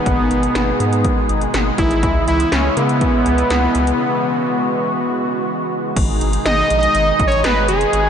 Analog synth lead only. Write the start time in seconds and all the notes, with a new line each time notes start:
Already playing: B3
1.78 E4
2.28 E4
2.52 C#4
2.77 B3
6.46 D#5
6.78 D#5
7.27 C#5
7.44 B4
7.68 G#4